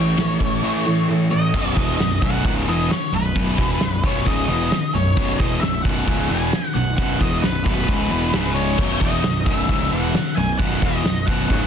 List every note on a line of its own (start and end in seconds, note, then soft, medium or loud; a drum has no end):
0.00 0.16 A1 medium
0.00 0.16 A2 medium
0.00 0.40 A2 medium
0.00 0.16 E3 medium
0.00 0.41 E3 loud
0.00 0.16 A3 medium
0.00 0.17 C#4 loud
0.00 0.18 E4 loud
0.00 0.19 A4 loud
0.00 1.05 C#5 medium
0.17 0.39 A1 medium
0.17 0.38 A2 medium
0.17 0.38 E3 medium
0.17 0.41 A3 medium
0.17 0.40 C#4 medium
0.17 0.40 E4 medium
0.17 0.38 A4 medium
0.17 snare loud
0.17 ride medium
0.40 0.62 A1 medium
0.40 0.61 A2 medium
0.40 0.61 E3 medium
0.40 0.87 A3 medium
0.40 0.86 C#4 medium
0.40 0.85 E4 medium
0.40 0.84 A4 medium
0.40 kick medium
0.40 ride medium
0.63 0.84 A2 medium
0.63 0.85 E3 medium
0.63 0.85 A3 medium
0.85 1.06 A2 medium
0.85 1.07 E3 medium
0.85 1.08 A3 medium
0.85 1.09 C#4 medium
0.85 1.10 E4 medium
0.85 1.10 A4 medium
1.08 1.53 A2 medium
1.08 1.29 A2 medium
1.08 1.53 E3 medium
1.08 1.29 E3 medium
1.08 1.53 A3 medium
1.08 1.54 C#4 medium
1.08 1.54 E4 loud
1.08 1.54 A4 medium
1.30 1.51 A2 medium
1.30 1.52 E3 medium
1.30 1.74 D#5 medium
1.54 1.75 B0 medium
1.54 1.76 B1 loud
1.54 1.76 F#2 loud
1.54 1.75 B2 loud
1.54 kick loud
1.54 crash loud
1.76 1.98 E1 loud
1.76 1.98 E2 medium
1.76 1.99 B2 loud
1.76 1.99 E3 loud
1.76 2.18 D#5 medium
1.76 kick loud
1.99 2.21 B0 medium
1.99 2.17 B1 medium
1.99 2.18 F#2 medium
1.99 snare loud
1.99 open hi-hat medium
2.22 2.43 B0 medium
2.22 2.43 B1 medium
2.22 2.44 F#2 medium
2.22 2.44 B2 loud
2.22 2.45 F#5 loud
2.22 kick loud
2.44 2.66 C#1 loud
2.44 2.66 C#2 loud
2.44 2.67 G#2 loud
2.44 2.67 C#3 loud
2.44 2.52 F#5 medium
2.44 kick loud
2.44 open hi-hat medium
2.67 2.89 E1 medium
2.67 2.89 E2 loud
2.67 2.89 B2 loud
2.67 2.90 E3 loud
2.67 2.90 D#5 medium
2.91 3.14 C#5 medium
2.91 snare loud
2.91 open hi-hat medium
3.12 3.34 B0 medium
3.12 3.31 B1 medium
3.12 3.31 F#2 medium
3.12 4.07 B4 medium
3.35 3.57 B0 medium
3.35 3.58 B1 medium
3.35 3.58 F#2 medium
3.35 3.57 B2 loud
3.35 kick loud
3.35 open hi-hat medium
3.58 3.79 E1 loud
3.58 3.80 E2 loud
3.58 3.80 B2 loud
3.58 3.81 E3 loud
3.58 kick loud
3.80 4.02 B0 medium
3.80 3.99 B1 medium
3.80 4.00 F#2 medium
3.80 snare loud
3.80 open hi-hat medium
4.03 4.25 B0 medium
4.03 4.26 B1 medium
4.03 4.26 F#2 medium
4.03 4.26 B2 loud
4.03 4.27 C#5 loud
4.03 kick loud
4.26 4.47 C#1 medium
4.26 4.48 C#2 loud
4.26 4.49 G#2 loud
4.26 4.49 C#3 loud
4.26 4.94 D#5 medium
4.26 kick medium
4.26 open hi-hat medium
4.49 4.70 E1 loud
4.49 4.71 E2 loud
4.49 4.71 B2 loud
4.49 4.71 E3 loud
4.71 snare loud
4.71 open hi-hat medium
4.94 5.15 B0 medium
4.94 5.13 B1 medium
4.94 5.13 F#2 medium
4.94 5.37 C#5 medium
5.17 5.38 B0 loud
5.17 5.39 B1 loud
5.17 5.39 F#2 loud
5.17 5.39 B2 loud
5.17 kick loud
5.17 open hi-hat medium
5.40 5.61 E1 loud
5.40 5.62 E2 medium
5.40 5.62 B2 loud
5.40 5.62 E3 loud
5.40 5.60 D#5 loud
5.40 kick loud
5.61 5.83 B0 medium
5.61 5.80 B1 medium
5.61 5.81 F#2 medium
5.61 5.85 E5 medium
5.61 snare loud
5.61 open hi-hat medium
5.82 6.06 B0 loud
5.82 6.06 B1 medium
5.82 6.07 F#2 loud
5.82 6.07 B2 medium
5.82 6.29 F#5 loud
5.82 kick loud
6.07 6.29 C#1 loud
6.07 6.29 C#2 loud
6.07 6.29 G#2 loud
6.07 6.30 C#3 loud
6.07 kick loud
6.07 open hi-hat medium
6.29 6.52 E1 loud
6.29 6.52 E2 loud
6.29 6.52 B2 loud
6.29 6.52 E3 loud
6.29 6.74 G#5 loud
6.52 snare loud
6.52 open hi-hat medium
6.74 6.96 B0 medium
6.74 6.93 B1 medium
6.74 6.93 F#2 medium
6.74 6.96 F#5 loud
6.97 7.19 B0 loud
6.97 7.19 B1 medium
6.97 7.20 F#2 loud
6.97 7.19 B2 loud
6.97 7.21 F#5 loud
6.97 kick loud
6.97 open hi-hat medium
7.20 7.42 E1 medium
7.20 7.42 E2 loud
7.20 7.42 B2 loud
7.20 7.43 E3 loud
7.20 7.42 D#5 loud
7.20 kick loud
7.42 7.65 B0 medium
7.42 7.61 B1 medium
7.42 7.62 F#2 medium
7.42 7.64 B4 medium
7.42 snare loud
7.42 open hi-hat medium
7.65 7.87 B0 loud
7.65 7.87 B1 medium
7.65 7.88 F#2 medium
7.65 7.88 B2 medium
7.65 8.59 B4 loud
7.65 kick loud
7.88 8.10 C#1 medium
7.88 8.10 C#2 loud
7.88 8.10 G#2 loud
7.88 8.11 C#3 loud
7.88 kick loud
7.88 open hi-hat medium
8.11 8.33 E1 loud
8.11 8.33 E2 loud
8.11 8.33 B2 loud
8.11 8.34 E3 loud
8.33 8.76 C#1 loud
8.33 8.78 C#2 medium
8.33 8.79 G#2 medium
8.33 8.79 C#3 loud
8.33 snare loud
8.33 open hi-hat medium
8.46 snare soft
8.54 8.97 C#5 medium
8.78 9.00 B0 loud
8.78 9.01 B1 loud
8.78 9.01 F#2 loud
8.78 9.01 B2 loud
8.78 kick loud
8.78 crash loud
9.01 9.23 E1 medium
9.01 9.24 E2 medium
9.01 9.24 B2 medium
9.01 9.24 E3 loud
9.01 9.46 D#5 loud
9.01 kick loud
9.23 9.45 B0 medium
9.23 9.42 B1 medium
9.23 9.43 F#2 medium
9.23 snare loud
9.23 open hi-hat medium
9.45 9.68 B0 loud
9.45 9.68 B1 medium
9.45 9.69 F#2 medium
9.45 9.69 B2 medium
9.45 9.89 E5 loud
9.45 kick loud
9.69 9.91 C#1 loud
9.69 9.91 C#2 loud
9.69 9.91 G#2 loud
9.69 9.92 C#3 loud
9.69 kick loud
9.69 open hi-hat medium
9.91 10.13 E1 loud
9.91 10.14 E2 loud
9.91 10.14 B2 loud
9.91 10.14 E3 loud
9.91 10.35 F#5 loud
10.14 snare loud
10.14 open hi-hat medium
10.26 snare soft
10.36 10.59 B0 medium
10.36 10.55 B1 medium
10.36 10.55 F#2 medium
10.36 10.58 G#5 loud
10.58 10.81 B0 loud
10.58 10.81 B1 loud
10.58 10.82 F#2 loud
10.58 10.81 B2 loud
10.58 10.83 F#5 loud
10.58 kick loud
10.58 open hi-hat medium
10.81 11.04 E1 loud
10.81 11.04 E2 loud
10.81 11.04 B2 loud
10.81 11.05 E3 loud
10.81 11.28 D#5 loud
10.81 kick loud
11.05 11.26 B0 medium
11.05 11.23 B1 medium
11.05 11.24 F#2 medium
11.05 snare loud
11.05 open hi-hat medium
11.26 11.49 B0 loud
11.26 11.49 B1 medium
11.26 11.49 F#2 loud
11.26 11.50 B2 medium
11.26 11.67 F#5 loud
11.26 kick loud
11.49 11.67 C#1 medium
11.49 11.67 C#2 loud
11.49 11.67 G#2 loud
11.49 11.67 C#3 loud
11.49 kick loud
11.49 open hi-hat medium